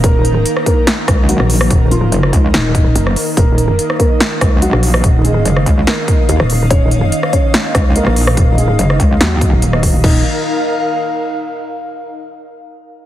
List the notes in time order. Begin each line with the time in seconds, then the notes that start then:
Already playing: D#3 A#3 D#4 A#4
0.04 D#1 A#3 A#4, kick, closed hi-hat
0.25 closed hi-hat
0.46 closed hi-hat
0.57 cross-stick
0.66 A#3 A#4, kick, closed hi-hat
0.87 snare, closed hi-hat
1.08 C#2, kick, cross-stick, closed hi-hat
1.29 F#3 F#4, closed hi-hat
1.40 A#1, cross-stick
1.50 open hi-hat
1.61 cross-stick
1.70 D#1, kick, closed hi-hat
1.91 F3 F4, closed hi-hat
2.12 F#1, closed hi-hat
2.23 cross-stick
2.33 C#2, kick, closed hi-hat
2.54 D#1 D#3 D#4, snare, closed hi-hat
2.75 kick, closed hi-hat
2.95 F#1, closed hi-hat
3.07 cross-stick
3.16 open hi-hat
3.37 D#1 A#3 A#4 F5, kick, closed hi-hat
3.58 D#5, closed hi-hat
3.79 closed hi-hat
3.90 cross-stick
4.00 A#3 A#4, kick, closed hi-hat
4.20 snare, closed hi-hat
4.41 C#2, kick, cross-stick, closed hi-hat
4.62 F#3 F#4, closed hi-hat
4.73 A#1, cross-stick
4.83 open hi-hat
4.94 cross-stick
5.04 D#1, kick, closed hi-hat
5.25 G#3 G#4, closed hi-hat
5.46 F#1, closed hi-hat
5.57 cross-stick
5.66 C#2, kick, closed hi-hat
5.87 A#3 A#4, snare, closed hi-hat
6.08 kick, closed hi-hat
6.29 D#2, closed hi-hat
6.40 D#1, cross-stick
6.50 open hi-hat
6.71 D#1 C#4 C#5, kick, closed hi-hat
6.91 closed hi-hat
7.12 closed hi-hat
7.23 cross-stick
7.33 C#4 C#5, kick, closed hi-hat
7.54 snare, closed hi-hat
7.75 C#2, kick, cross-stick, closed hi-hat
7.96 A#3 A#4, closed hi-hat
8.07 A#1, cross-stick
8.16 open hi-hat
8.27 cross-stick
8.37 D#1, kick, closed hi-hat
8.58 G#3 G#4, closed hi-hat
8.79 F#1, closed hi-hat
8.90 cross-stick
9.00 C#2, kick, closed hi-hat
9.20 D#2 F#3 F#4, snare, closed hi-hat
9.41 kick, closed hi-hat
9.52 D#1
9.62 closed hi-hat
9.73 cross-stick
9.83 kick, open hi-hat
9.94 D#1
10.04 D#1 D#4, kick, crash
10.11 A#4
10.17 F5